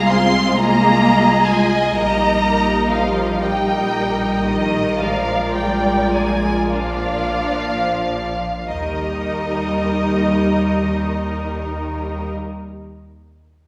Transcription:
0.00 1.95 C2 medium
0.00 1.96 G#3 loud
0.00 1.92 F4 medium
0.00 0.54 G#4 medium
0.00 0.53 F5 medium
0.08 0.55 C4 loud
0.08 0.55 C6 loud
0.54 1.48 A#3 loud
0.54 1.93 G#4 loud
0.54 3.40 D#5 medium
0.54 1.49 A#5 loud
1.48 1.94 G#3 medium
1.48 1.95 G#5 loud
1.95 8.35 A#1 loud
1.95 4.99 G3 medium
1.95 2.89 A#3 medium
1.95 3.39 D#4 medium
1.95 3.38 A#4 medium
1.95 2.91 A#5 loud
2.91 3.41 F3 medium
2.91 3.40 F5 medium
3.40 4.44 G3 medium
3.40 4.95 D#4 medium
3.40 6.67 A#4 medium
3.40 4.96 D#5 medium
3.40 4.45 G5 loud
4.44 4.97 D#3 medium
4.44 4.99 D#5 loud
4.99 5.54 F3 medium
4.99 6.68 G#3 medium
4.99 6.71 F4 medium
4.99 6.70 D5 medium
4.99 5.55 F5 loud
5.55 6.11 G3 medium
5.55 6.11 G5 medium
6.12 6.71 G#3 medium
6.12 6.71 G#5 loud
6.71 8.68 F3 medium
6.71 8.39 A#3 medium
6.71 8.39 D4 medium
6.71 8.39 F4 medium
6.71 8.36 D5 medium
6.71 8.68 F5 loud
8.67 12.30 D#2 medium
8.67 12.30 D#3 medium
8.67 12.29 G3 medium
8.67 12.29 D#4 medium
8.67 12.29 A#4 medium
8.67 12.31 D#5 loud

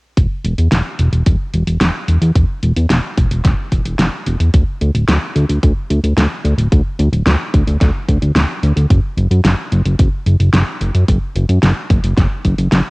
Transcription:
0.17 0.27 E1 loud
0.17 kick loud
0.17 closed hi-hat medium
0.45 0.54 E1 medium
0.45 closed hi-hat medium
0.58 0.68 E2 medium
0.58 closed hi-hat medium
0.72 0.82 E1 loud
0.72 snare loud
0.72 closed hi-hat medium
0.99 1.09 E1 medium
0.99 closed hi-hat medium
1.13 1.23 E1 medium
1.13 closed hi-hat medium
1.26 1.36 E1 loud
1.26 kick loud
1.26 closed hi-hat medium
1.54 1.64 E1 medium
1.54 closed hi-hat medium
1.67 1.77 E1 medium
1.67 closed hi-hat medium
1.81 1.91 E1 loud
1.81 snare loud
1.81 closed hi-hat medium
2.08 2.18 E1 medium
2.08 closed hi-hat medium
2.22 2.32 E2 medium
2.22 closed hi-hat medium
2.36 2.45 E1 loud
2.36 kick loud
2.36 closed hi-hat medium
2.63 2.73 E1 medium
2.63 closed hi-hat medium
2.76 2.86 E2 medium
2.76 closed hi-hat medium
2.90 3.00 E1 loud
2.90 snare loud
2.90 closed hi-hat medium
3.17 3.27 E1 medium
3.17 kick loud
3.17 closed hi-hat medium
3.31 3.41 E1 medium
3.31 closed hi-hat medium
3.45 3.54 E1 loud
3.45 kick loud
3.45 snare medium
3.45 closed hi-hat medium
3.72 3.82 E1 medium
3.72 kick medium
3.72 closed hi-hat medium
3.85 3.95 E1 medium
3.85 closed hi-hat medium
3.99 4.09 E1 loud
3.99 snare loud
3.99 closed hi-hat medium
4.26 4.36 E1 medium
4.26 closed hi-hat medium
4.40 4.50 E2 medium
4.40 closed hi-hat medium
4.54 4.64 D2 loud
4.54 kick loud
4.54 closed hi-hat medium
4.81 4.91 D2 medium
4.81 closed hi-hat medium
4.95 5.04 D1 medium
4.95 closed hi-hat medium
5.08 5.18 D2 loud
5.08 snare loud
5.08 closed hi-hat medium
5.36 5.45 D2 medium
5.36 closed hi-hat medium
5.49 5.59 D2 medium
5.49 closed hi-hat medium
5.63 5.73 D2 loud
5.63 kick loud
5.63 closed hi-hat medium
5.90 6.00 D2 medium
5.90 closed hi-hat medium
6.04 6.14 D2 medium
6.04 closed hi-hat medium
6.17 6.27 D2 loud
6.17 snare loud
6.17 closed hi-hat medium
6.45 6.54 D2 medium
6.45 closed hi-hat medium
6.58 6.68 D1 medium
6.58 closed hi-hat medium
6.72 6.82 D2 loud
6.72 kick loud
6.72 closed hi-hat medium
6.99 7.09 D2 medium
6.99 closed hi-hat medium
7.13 7.23 D1 medium
7.13 closed hi-hat medium
7.26 7.36 D2 loud
7.26 snare loud
7.26 closed hi-hat medium
7.54 7.64 D2 medium
7.54 kick loud
7.54 closed hi-hat medium
7.67 7.77 D2 medium
7.67 closed hi-hat medium
7.81 7.91 D2 loud
7.81 kick loud
7.81 snare medium
7.81 closed hi-hat medium
8.08 8.18 D2 medium
8.08 kick medium
8.08 closed hi-hat medium
8.22 8.32 D2 medium
8.22 closed hi-hat medium
8.35 8.45 D1 loud
8.35 snare loud
8.35 closed hi-hat medium
8.63 8.73 D2 medium
8.63 closed hi-hat medium
8.76 8.86 D2 medium
8.76 closed hi-hat medium
8.90 9.00 F#1 loud
8.90 kick loud
8.90 closed hi-hat medium
9.17 9.27 F#1 medium
9.17 closed hi-hat medium
9.31 9.41 F#2 medium
9.31 closed hi-hat medium
9.45 9.55 F#1 loud
9.45 snare loud
9.45 closed hi-hat medium
9.72 9.82 F#1 medium
9.72 closed hi-hat medium
9.86 9.95 F#1 medium
9.86 closed hi-hat medium
9.99 10.09 F#1 loud
9.99 kick loud
9.99 closed hi-hat medium
10.26 10.36 F#1 medium
10.26 closed hi-hat medium
10.40 10.50 F#1 medium
10.40 closed hi-hat medium
10.54 10.63 F#1 loud
10.54 snare loud
10.54 closed hi-hat medium
10.81 10.91 F#1 medium
10.81 closed hi-hat medium
10.95 11.04 F#2 medium
10.95 closed hi-hat medium
11.08 11.18 F#1 loud
11.08 kick loud
11.08 closed hi-hat medium
11.35 11.45 F#1 medium
11.35 closed hi-hat medium
11.49 11.59 F#2 medium
11.49 closed hi-hat medium
11.63 11.73 F#1 loud
11.63 snare loud
11.63 closed hi-hat medium
11.90 12.00 F#1 medium
11.90 kick loud
11.90 closed hi-hat medium
12.04 12.14 F#1 medium
12.04 closed hi-hat medium
12.18 12.27 F#1 loud
12.18 kick loud
12.18 snare medium
12.18 closed hi-hat medium
12.45 12.55 F#1 medium
12.45 kick medium
12.45 closed hi-hat medium
12.58 12.68 F#1 medium
12.58 closed hi-hat medium
12.72 12.82 F#1 loud
12.72 snare loud
12.72 closed hi-hat medium

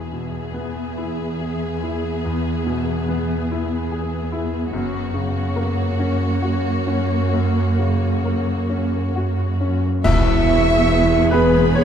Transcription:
0.00 0.51 E1 soft
0.00 2.20 E2 soft
0.00 4.69 E2 soft
0.00 5.94 B3 soft
0.00 4.68 G#4 soft
0.00 4.68 E5 soft
0.12 0.80 B2 soft
0.54 1.22 B3 soft
0.98 1.65 E4 soft
1.40 2.07 G#4 soft
1.83 2.50 E4 soft
2.25 4.69 E2 soft
2.67 3.33 B2 soft
3.09 3.75 B3 soft
3.51 4.16 E4 soft
3.92 4.57 G#4 soft
4.32 4.73 E4 soft
4.72 5.52 F#1 soft
4.72 9.81 F#2 medium
4.72 7.29 F#2 soft
4.72 9.80 F#4 medium
4.72 9.84 C#5 soft
5.14 5.82 C#3 soft
5.56 6.25 A#3 soft
5.98 9.84 A#3 soft
5.98 6.69 C#4 soft
6.42 7.14 F#4 soft
6.87 7.61 C#4 soft
7.34 10.01 F#2 soft
7.79 8.52 C#3 soft
8.25 8.98 A#3 soft
8.70 9.42 C#4 soft
9.16 9.88 F#4 soft
9.61 10.04 C#4 soft
10.04 11.84 E1 medium
10.04 11.84 E2 medium
10.04 11.84 B3 medium
10.04 11.28 E4 medium
10.04 11.84 G#4 medium
10.04 11.28 E5 medium
10.04 11.28 C#6 medium
10.04 concert bass drum medium
10.04 crash medium
11.31 11.84 B3 soft
11.31 11.75 B3 medium
11.31 11.84 G#4 medium
11.31 11.71 B4 medium
11.31 11.77 B4 medium
11.31 11.75 B4 medium
11.31 11.84 B5 medium
11.75 11.84 C#4 medium
11.75 11.84 C#5 medium

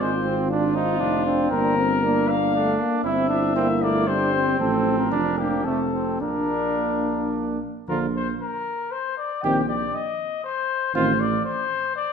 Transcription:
0.01 1.02 G#1 medium
0.01 0.12 G#3 soft
0.01 0.52 C4 soft
0.01 1.01 F4 soft
0.01 0.35 C5 medium
0.25 0.50 C4 medium
0.49 0.76 D4 medium
0.49 0.77 D4 medium
0.49 1.49 F4 medium
0.75 1.50 C4 medium
0.75 1.02 D#4 medium
1.00 1.51 F1 soft
1.00 1.25 D4 medium
1.00 1.27 D#4 soft
1.25 1.75 C4 medium
1.25 1.51 D4 medium
1.51 2.75 G1 medium
1.51 1.84 A#3 medium
1.51 1.78 D4 medium
1.51 2.30 A#4 medium
1.77 2.05 C4 medium
2.02 2.51 A#3 medium
2.02 2.37 A#3 medium
2.02 2.27 D4 medium
2.29 3.05 D4 medium
2.29 2.79 F5 medium
2.55 2.81 A3 medium
2.55 3.04 D4 medium
2.80 3.04 A#3 medium
3.03 4.56 G1 medium
3.03 3.57 C4 medium
3.03 3.32 C4 soft
3.03 3.28 E4 medium
3.03 3.84 E5 medium
3.29 3.55 D4 medium
3.29 4.10 E4 medium
3.56 3.84 A#3 medium
3.56 3.68 C4 medium
3.82 4.07 A3 medium
3.82 4.08 A#3 medium
3.82 4.09 D5 medium
4.07 4.59 G3 soft
4.07 5.10 C4 medium
4.07 4.36 D4 medium
4.07 4.59 C5 medium
4.35 4.59 C4 medium
4.59 5.13 A1 medium
4.59 5.10 F3 soft
4.59 5.11 C4 soft
4.59 4.98 A4 medium
4.99 5.39 A#4 medium
5.11 5.64 F1 medium
5.11 5.66 F3 soft
5.11 5.23 D4 soft
5.11 5.38 D4 medium
5.38 5.65 A#3 soft
5.38 5.66 D4 soft
5.38 5.66 G4 medium
5.64 6.20 F1 soft
5.64 5.78 A3 soft
5.64 6.20 C4 soft
5.64 6.23 C4 soft
5.64 6.20 A4 medium
5.93 6.20 C4 soft
6.21 7.59 A#1 soft
6.21 7.59 A#3 soft
6.21 7.59 D4 soft
6.21 7.62 D4 soft
6.21 7.32 A#4 medium
7.88 8.33 A#1 medium
7.88 8.07 D3 soft
7.88 8.07 F3 soft
7.88 8.07 F4 soft
7.88 8.00 A#4 medium
8.16 8.27 C5 medium
8.42 8.93 A#4 medium
8.91 9.17 C5 medium
9.17 9.44 D5 medium
9.43 9.86 A#1 medium
9.43 9.62 D#3 soft
9.43 9.62 C4 soft
9.43 9.62 G4 soft
9.43 9.68 G5 medium
9.68 9.96 D5 medium
9.94 10.44 D#5 medium
10.45 10.94 C5 medium
10.95 11.37 A1 medium
10.95 11.12 D#3 soft
10.95 11.12 C4 soft
10.95 11.13 F4 medium
10.95 11.22 C5 medium
11.20 11.44 D5 medium
11.44 11.94 C5 medium
11.95 12.13 D5 medium

